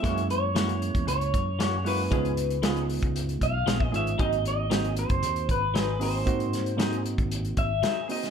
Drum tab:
HH |xxx-xxxxxxx-x-o-|xxxxxxoxxxx-x-xx|xxx-xxxxxxx-x-o-|xxxxxxxxxxx-x-ox|
SD |----o-------o---|----o-------o---|----o-------o---|--o-o-------o--o|
BD |o------o--o-----|o------o--o--o--|o------o--o-----|o------o--o-----|